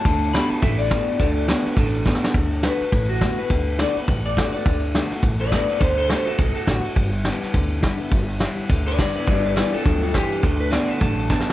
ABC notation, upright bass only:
X:1
M:4/4
L:1/8
Q:"Swing" 1/4=208
K:D
V:1 name="Upright bass" clef=bass
D,,3 z A,,,3 z | D,,3 z A,,,3 z | D,,3 z A,,,3 z | D,,3 z A,,,3 z |
D,,3 z A,,,3 z | D,,3 z B,,, z A,,, z | G,,,3 z D,,3 z | G,,,3 z D,,3 z |
G,,,3 z D,,3 z | D,,3 z A,,,3 z |]